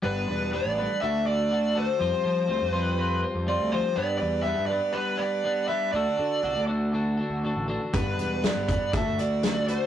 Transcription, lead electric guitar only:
0.03 0.49 B4 medium
0.53 1.01 D5 medium
1.01 1.25 E5 medium
1.26 1.77 D5 medium
1.77 2.70 C5 medium
2.70 3.21 B4 medium
3.48 3.74 D5 medium
3.72 3.95 C5 medium
3.96 4.17 D5 medium
4.18 4.42 D5 medium
4.43 4.66 E5 medium
4.66 4.95 D5 medium
4.93 5.20 B4 medium
5.17 5.67 D5 medium
5.68 5.92 E5 medium
5.92 6.64 D5 medium
7.94 8.45 B4 medium
8.45 8.91 D5 medium
8.95 9.19 E5 medium
9.20 9.65 D5 medium
9.69 9.87 C5 medium

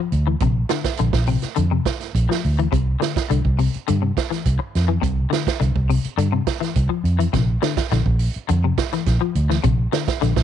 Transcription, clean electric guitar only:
0.00 0.16 F3 medium
0.27 0.35 E3 medium
0.42 0.59 C3 medium
0.70 0.87 D3 medium
0.99 1.16 D3 medium
1.28 1.45 C3 medium
1.56 1.65 D3 medium
1.71 1.88 C3 medium
2.29 2.46 F3 medium
2.59 2.67 E3 medium
2.72 2.89 C3 medium
3.00 3.17 D3 medium
3.30 3.47 D3 medium
3.59 3.76 C3 medium
3.88 3.96 D3 medium
4.02 4.19 C3 medium
4.30 4.48 E3 medium
4.59 muted clean electric guitar stroke medium
4.88 4.97 E3 medium
5.01 5.19 C3 medium
5.30 5.48 D3 medium
5.60 5.77 D3 medium
5.89 6.06 C3 medium
6.18 6.26 D3 medium
6.32 6.49 C3 medium
6.60 6.78 E3 medium
6.89 7.07 F3 medium
7.19 7.27 E3 medium
7.33 7.50 C3 medium
7.62 7.79 D3 medium
7.92 8.08 D3 medium
8.49 8.57 D3 medium
8.64 8.81 C3 medium
8.93 9.10 E3 medium
9.21 9.38 F3 medium
9.50 9.58 E3 medium
9.64 9.81 C3 loud
9.92 10.09 D3 medium
10.21 10.38 D3 medium

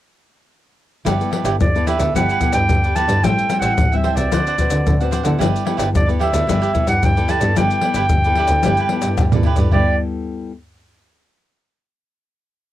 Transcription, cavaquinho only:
1.05 1.29 E4 medium
1.05 1.31 G4 medium
1.05 1.31 B4 medium
1.05 1.32 D5 medium
1.31 1.43 E4 soft
1.31 1.44 G4 soft
1.31 1.44 B4 medium
1.31 1.45 D5 medium
1.45 1.55 E4 medium
1.45 1.55 G4 medium
1.45 1.55 B4 medium
1.45 1.56 D5 medium
1.75 1.86 G4 soft
1.75 1.87 B4 soft
1.75 1.87 D5 soft
1.87 2.00 E4 medium
1.87 2.00 G4 medium
1.87 2.00 B4 medium
1.87 1.98 D5 medium
2.01 2.14 G4 soft
2.01 2.14 B4 soft
2.15 2.27 E4 medium
2.15 2.28 G4 medium
2.15 2.28 B4 medium
2.15 2.29 D5 medium
2.30 2.38 E4 medium
2.30 2.39 G4 medium
2.30 2.39 B4 medium
2.30 2.39 D5 medium
2.41 2.81 E4 soft
2.41 2.82 G4 soft
2.41 2.82 B4 soft
2.41 2.82 D5 soft
2.84 2.95 G4 soft
2.84 2.96 B4 soft
2.84 2.96 D5 soft
2.95 3.08 E4 medium
2.95 3.08 G4 medium
2.95 3.07 B4 medium
2.95 3.06 D5 medium
3.07 3.22 G4 soft
3.07 3.22 B4 soft
3.07 3.21 D5 medium
3.24 3.48 A4 medium
3.24 3.49 C5 medium
3.24 3.50 E5 medium
3.24 3.51 G5 medium
3.50 3.61 A4 soft
3.50 3.61 C5 soft
3.50 3.62 E5 soft
3.50 3.62 G5 medium
3.62 3.72 A4 medium
3.62 3.72 C5 medium
3.62 3.73 E5 medium
3.62 3.73 G5 medium
3.92 4.03 C5 soft
3.92 4.03 E5 soft
3.92 4.04 G5 soft
4.04 4.17 A4 medium
4.04 4.17 C5 medium
4.04 4.17 E5 medium
4.04 4.16 G5 medium
4.17 4.31 C5 soft
4.17 4.31 E5 soft
4.17 4.30 G5 soft
4.32 4.44 D4 medium
4.32 4.45 C5 medium
4.32 4.45 D5 medium
4.32 4.45 F#5 medium
4.47 4.55 D4 medium
4.47 4.55 C5 medium
4.47 4.55 D5 medium
4.47 4.56 F#5 medium
4.59 4.99 C5 soft
4.59 4.99 D5 soft
4.59 4.99 F#5 medium
5.01 5.11 C5 soft
5.01 5.12 D5 soft
5.01 5.12 F#5 soft
5.11 5.25 D4 medium
5.11 5.24 C5 medium
5.11 5.23 D5 medium
5.11 5.22 F#5 medium
5.23 5.38 C5 soft
5.23 5.38 D5 soft
5.23 5.37 F#5 medium
5.38 5.64 E4 medium
5.38 5.64 G4 medium
5.38 5.65 B4 medium
5.38 5.66 D5 medium
5.65 5.76 E4 soft
5.65 5.76 G4 medium
5.65 5.77 B4 medium
5.65 5.77 D5 soft
5.77 5.88 E4 medium
5.77 5.88 G4 medium
5.77 5.88 B4 medium
5.77 5.88 D5 medium
6.06 6.19 G4 soft
6.06 6.19 B4 soft
6.06 6.19 D5 soft
6.19 6.33 E4 medium
6.19 6.32 G4 medium
6.19 6.32 B4 medium
6.19 6.30 D5 medium
6.32 6.47 G4 soft
6.32 6.46 B4 soft
6.32 6.46 D5 medium
6.47 6.60 E4 medium
6.47 6.60 G4 medium
6.47 6.60 B4 medium
6.47 6.61 D5 medium
6.61 6.70 E4 medium
6.61 6.71 G4 medium
6.61 6.71 B4 medium
6.61 6.71 D5 medium
6.73 7.14 E4 soft
6.73 7.14 G4 soft
6.73 7.14 B4 medium
6.73 7.15 D5 medium
7.16 7.28 G4 soft
7.16 7.29 B4 soft
7.16 7.29 D5 soft
7.28 7.41 E4 medium
7.28 7.41 G4 medium
7.28 7.39 B4 medium
7.28 7.38 D5 medium
7.39 7.55 G4 soft
7.39 7.54 B4 soft
7.39 7.54 D5 soft
7.55 7.80 E4 medium
7.55 7.81 G4 medium
7.55 7.82 B4 medium
7.55 7.83 D5 medium
7.82 7.94 E4 soft
7.82 7.94 G4 medium
7.82 7.95 B4 medium
7.82 7.95 D5 medium
7.95 8.05 E4 medium
7.95 8.05 G4 medium
7.95 8.06 B4 medium
7.95 8.06 D5 medium
8.24 8.36 G4 soft
8.24 8.37 B4 soft
8.24 8.37 D5 soft
8.37 8.50 E4 medium
8.37 8.50 G4 medium
8.37 8.49 B4 medium
8.37 8.48 D5 medium
8.49 8.64 G4 soft
8.49 8.63 B4 soft
8.49 8.63 D5 medium
8.64 8.77 E4 medium
8.64 8.77 G4 medium
8.64 8.78 B4 medium
8.64 8.78 D5 medium
8.79 8.88 E4 medium
8.79 8.88 G4 medium
8.79 8.88 B4 medium
8.79 8.88 D5 medium
8.90 9.31 E4 soft
8.90 9.31 G4 soft
8.90 9.32 B4 soft
8.90 9.31 D5 medium
9.33 9.45 G4 soft
9.33 9.46 B4 soft
9.33 9.45 D5 soft
9.45 9.58 E4 medium
9.45 9.58 G4 medium
9.45 9.56 B4 medium
9.45 9.55 D5 medium
9.57 9.71 G4 soft
9.57 9.71 B4 soft
9.57 9.71 D5 soft
9.72 9.94 E4 medium
9.72 9.94 G4 medium
9.72 9.95 B4 medium
9.72 9.95 D5 medium

